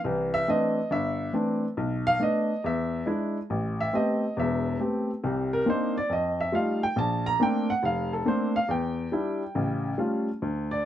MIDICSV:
0, 0, Header, 1, 2, 480
1, 0, Start_track
1, 0, Tempo, 431655
1, 47, Time_signature, 4, 2, 24, 8
1, 12067, End_track
2, 0, Start_track
2, 0, Title_t, "Upright piano"
2, 0, Program_c, 0, 0
2, 50, Note_on_c, 0, 36, 72
2, 50, Note_on_c, 0, 52, 73
2, 376, Note_on_c, 0, 76, 99
2, 465, Note_off_c, 0, 36, 0
2, 465, Note_off_c, 0, 52, 0
2, 528, Note_off_c, 0, 76, 0
2, 535, Note_on_c, 0, 52, 57
2, 536, Note_on_c, 0, 57, 52
2, 538, Note_on_c, 0, 60, 52
2, 540, Note_on_c, 0, 62, 63
2, 552, Note_on_c, 0, 75, 84
2, 866, Note_off_c, 0, 52, 0
2, 866, Note_off_c, 0, 57, 0
2, 867, Note_off_c, 0, 60, 0
2, 869, Note_off_c, 0, 62, 0
2, 987, Note_off_c, 0, 75, 0
2, 1011, Note_on_c, 0, 31, 70
2, 1026, Note_on_c, 0, 76, 81
2, 1426, Note_off_c, 0, 31, 0
2, 1464, Note_off_c, 0, 76, 0
2, 1481, Note_on_c, 0, 52, 54
2, 1483, Note_on_c, 0, 57, 46
2, 1489, Note_on_c, 0, 60, 51
2, 1495, Note_on_c, 0, 62, 59
2, 1819, Note_off_c, 0, 52, 0
2, 1820, Note_off_c, 0, 57, 0
2, 1823, Note_off_c, 0, 60, 0
2, 1826, Note_off_c, 0, 62, 0
2, 1971, Note_on_c, 0, 35, 72
2, 2299, Note_on_c, 0, 77, 113
2, 2386, Note_off_c, 0, 35, 0
2, 2441, Note_on_c, 0, 57, 56
2, 2446, Note_on_c, 0, 59, 51
2, 2450, Note_off_c, 0, 77, 0
2, 2452, Note_on_c, 0, 62, 63
2, 2476, Note_on_c, 0, 75, 84
2, 2779, Note_off_c, 0, 57, 0
2, 2782, Note_off_c, 0, 59, 0
2, 2785, Note_off_c, 0, 62, 0
2, 2910, Note_off_c, 0, 75, 0
2, 2937, Note_on_c, 0, 40, 70
2, 2959, Note_on_c, 0, 76, 78
2, 3350, Note_off_c, 0, 40, 0
2, 3391, Note_off_c, 0, 76, 0
2, 3404, Note_on_c, 0, 56, 54
2, 3407, Note_on_c, 0, 62, 50
2, 3415, Note_on_c, 0, 64, 60
2, 3741, Note_off_c, 0, 56, 0
2, 3743, Note_off_c, 0, 62, 0
2, 3747, Note_off_c, 0, 64, 0
2, 3893, Note_on_c, 0, 33, 67
2, 4232, Note_on_c, 0, 76, 86
2, 4308, Note_off_c, 0, 33, 0
2, 4370, Note_on_c, 0, 57, 52
2, 4373, Note_on_c, 0, 59, 50
2, 4374, Note_on_c, 0, 60, 49
2, 4377, Note_off_c, 0, 76, 0
2, 4380, Note_on_c, 0, 67, 59
2, 4395, Note_on_c, 0, 75, 75
2, 4705, Note_off_c, 0, 57, 0
2, 4706, Note_off_c, 0, 59, 0
2, 4707, Note_off_c, 0, 60, 0
2, 4710, Note_off_c, 0, 67, 0
2, 4830, Note_off_c, 0, 75, 0
2, 4858, Note_on_c, 0, 40, 67
2, 4861, Note_on_c, 0, 28, 65
2, 4888, Note_on_c, 0, 76, 75
2, 5271, Note_off_c, 0, 40, 0
2, 5272, Note_off_c, 0, 28, 0
2, 5317, Note_off_c, 0, 76, 0
2, 5333, Note_on_c, 0, 57, 49
2, 5336, Note_on_c, 0, 59, 44
2, 5336, Note_on_c, 0, 60, 45
2, 5341, Note_on_c, 0, 67, 57
2, 5666, Note_off_c, 0, 57, 0
2, 5668, Note_off_c, 0, 59, 0
2, 5668, Note_off_c, 0, 60, 0
2, 5670, Note_off_c, 0, 67, 0
2, 5822, Note_on_c, 0, 48, 69
2, 5823, Note_on_c, 0, 36, 68
2, 6152, Note_on_c, 0, 70, 88
2, 6233, Note_off_c, 0, 48, 0
2, 6234, Note_off_c, 0, 36, 0
2, 6295, Note_on_c, 0, 58, 52
2, 6295, Note_on_c, 0, 60, 50
2, 6298, Note_off_c, 0, 70, 0
2, 6302, Note_on_c, 0, 62, 51
2, 6304, Note_on_c, 0, 63, 60
2, 6336, Note_on_c, 0, 72, 83
2, 6624, Note_off_c, 0, 72, 0
2, 6628, Note_off_c, 0, 58, 0
2, 6628, Note_off_c, 0, 60, 0
2, 6631, Note_off_c, 0, 62, 0
2, 6633, Note_off_c, 0, 63, 0
2, 6645, Note_on_c, 0, 74, 87
2, 6779, Note_on_c, 0, 41, 67
2, 6785, Note_off_c, 0, 74, 0
2, 6813, Note_on_c, 0, 75, 79
2, 7102, Note_off_c, 0, 75, 0
2, 7123, Note_on_c, 0, 76, 82
2, 7192, Note_off_c, 0, 41, 0
2, 7254, Note_on_c, 0, 55, 55
2, 7262, Note_on_c, 0, 63, 48
2, 7263, Note_on_c, 0, 57, 48
2, 7264, Note_off_c, 0, 76, 0
2, 7265, Note_on_c, 0, 65, 57
2, 7281, Note_on_c, 0, 77, 77
2, 7576, Note_off_c, 0, 77, 0
2, 7588, Note_off_c, 0, 55, 0
2, 7591, Note_off_c, 0, 63, 0
2, 7592, Note_off_c, 0, 57, 0
2, 7593, Note_off_c, 0, 65, 0
2, 7599, Note_on_c, 0, 79, 95
2, 7742, Note_off_c, 0, 79, 0
2, 7742, Note_on_c, 0, 34, 71
2, 7768, Note_on_c, 0, 81, 89
2, 8059, Note_off_c, 0, 81, 0
2, 8077, Note_on_c, 0, 82, 105
2, 8153, Note_off_c, 0, 34, 0
2, 8221, Note_off_c, 0, 82, 0
2, 8223, Note_on_c, 0, 57, 55
2, 8226, Note_on_c, 0, 58, 50
2, 8229, Note_on_c, 0, 60, 51
2, 8235, Note_on_c, 0, 62, 59
2, 8259, Note_on_c, 0, 79, 89
2, 8545, Note_off_c, 0, 79, 0
2, 8552, Note_off_c, 0, 57, 0
2, 8554, Note_off_c, 0, 58, 0
2, 8555, Note_off_c, 0, 60, 0
2, 8558, Note_off_c, 0, 62, 0
2, 8562, Note_on_c, 0, 78, 87
2, 8704, Note_off_c, 0, 78, 0
2, 8704, Note_on_c, 0, 29, 69
2, 8733, Note_on_c, 0, 77, 80
2, 9022, Note_off_c, 0, 77, 0
2, 9041, Note_on_c, 0, 69, 69
2, 9115, Note_off_c, 0, 29, 0
2, 9178, Note_on_c, 0, 57, 52
2, 9182, Note_on_c, 0, 58, 47
2, 9182, Note_on_c, 0, 60, 48
2, 9183, Note_off_c, 0, 69, 0
2, 9187, Note_on_c, 0, 62, 58
2, 9208, Note_on_c, 0, 72, 73
2, 9499, Note_off_c, 0, 72, 0
2, 9509, Note_off_c, 0, 57, 0
2, 9511, Note_off_c, 0, 58, 0
2, 9512, Note_off_c, 0, 60, 0
2, 9514, Note_off_c, 0, 62, 0
2, 9518, Note_on_c, 0, 77, 89
2, 9658, Note_on_c, 0, 40, 68
2, 9661, Note_off_c, 0, 77, 0
2, 9685, Note_on_c, 0, 79, 76
2, 10071, Note_off_c, 0, 40, 0
2, 10142, Note_on_c, 0, 55, 55
2, 10144, Note_on_c, 0, 62, 48
2, 10151, Note_on_c, 0, 64, 60
2, 10471, Note_off_c, 0, 55, 0
2, 10472, Note_off_c, 0, 62, 0
2, 10476, Note_off_c, 0, 64, 0
2, 10619, Note_on_c, 0, 49, 67
2, 10622, Note_on_c, 0, 33, 68
2, 11031, Note_off_c, 0, 49, 0
2, 11033, Note_off_c, 0, 33, 0
2, 11063, Note_off_c, 0, 79, 0
2, 11096, Note_on_c, 0, 55, 51
2, 11097, Note_on_c, 0, 57, 49
2, 11100, Note_on_c, 0, 61, 44
2, 11106, Note_on_c, 0, 65, 57
2, 11428, Note_off_c, 0, 55, 0
2, 11428, Note_off_c, 0, 57, 0
2, 11430, Note_off_c, 0, 61, 0
2, 11433, Note_off_c, 0, 65, 0
2, 11588, Note_on_c, 0, 38, 70
2, 11913, Note_on_c, 0, 74, 89
2, 11996, Note_off_c, 0, 38, 0
2, 12058, Note_off_c, 0, 74, 0
2, 12067, End_track
0, 0, End_of_file